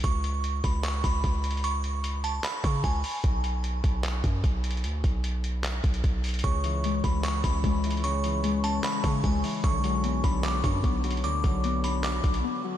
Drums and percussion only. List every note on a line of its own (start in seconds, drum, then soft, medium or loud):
0.04 kick loud
0.04 closed hi-hat medium
0.24 closed hi-hat medium
0.44 closed hi-hat medium
0.64 kick medium
0.64 closed hi-hat medium
0.84 clap loud
0.84 closed hi-hat medium
1.04 kick loud
1.04 closed hi-hat medium
1.24 kick loud
1.24 closed hi-hat medium
1.44 closed hi-hat medium
1.51 closed hi-hat medium
1.57 closed hi-hat soft
1.64 closed hi-hat medium
1.84 closed hi-hat medium
2.04 closed hi-hat medium
2.24 closed hi-hat medium
2.44 clap loud
2.44 closed hi-hat medium
2.64 kick loud
2.64 closed hi-hat medium
2.84 kick loud
2.84 closed hi-hat medium
3.04 open hi-hat medium
3.24 kick loud
3.24 closed hi-hat medium
3.44 closed hi-hat medium
3.64 closed hi-hat medium
3.84 kick loud
3.84 closed hi-hat medium
4.04 clap loud
4.04 closed hi-hat medium
4.24 kick loud
4.24 closed hi-hat medium
4.44 kick loud
4.44 closed hi-hat medium
4.64 closed hi-hat medium
4.71 closed hi-hat medium
4.77 closed hi-hat soft
4.84 closed hi-hat medium
5.04 kick medium
5.04 closed hi-hat medium
5.24 closed hi-hat medium
5.44 closed hi-hat medium
5.64 clap loud
5.64 closed hi-hat medium
5.84 kick loud
5.84 closed hi-hat medium
5.94 closed hi-hat medium
6.04 kick loud
6.04 closed hi-hat medium
6.24 closed hi-hat soft
6.24 open hi-hat medium
6.29 closed hi-hat medium
6.34 closed hi-hat medium
6.39 closed hi-hat medium
6.44 kick loud
6.44 closed hi-hat medium
6.64 closed hi-hat medium
6.84 closed hi-hat medium
7.04 kick medium
7.04 closed hi-hat medium
7.24 clap loud
7.24 closed hi-hat medium
7.44 kick medium
7.44 closed hi-hat medium
7.64 kick medium
7.64 closed hi-hat medium
7.84 closed hi-hat medium
7.91 closed hi-hat medium
7.97 closed hi-hat soft
8.04 closed hi-hat medium
8.24 closed hi-hat medium
8.44 closed hi-hat medium
8.64 closed hi-hat medium
8.84 clap loud
8.84 closed hi-hat medium
9.04 kick loud
9.04 closed hi-hat medium
9.24 kick loud
9.24 closed hi-hat medium
9.44 open hi-hat medium
9.64 kick loud
9.64 closed hi-hat medium
9.84 closed hi-hat medium
10.04 closed hi-hat medium
10.24 kick loud
10.24 closed hi-hat medium
10.44 clap loud
10.44 closed hi-hat medium
10.64 kick medium
10.64 closed hi-hat medium
10.84 kick loud
10.84 closed hi-hat medium
11.04 closed hi-hat medium
11.11 closed hi-hat medium
11.17 closed hi-hat soft
11.24 closed hi-hat medium
11.44 kick medium
11.44 closed hi-hat medium
11.64 closed hi-hat medium
11.84 closed hi-hat medium
12.04 clap loud
12.04 closed hi-hat medium
12.24 kick loud
12.24 closed hi-hat medium
12.34 closed hi-hat medium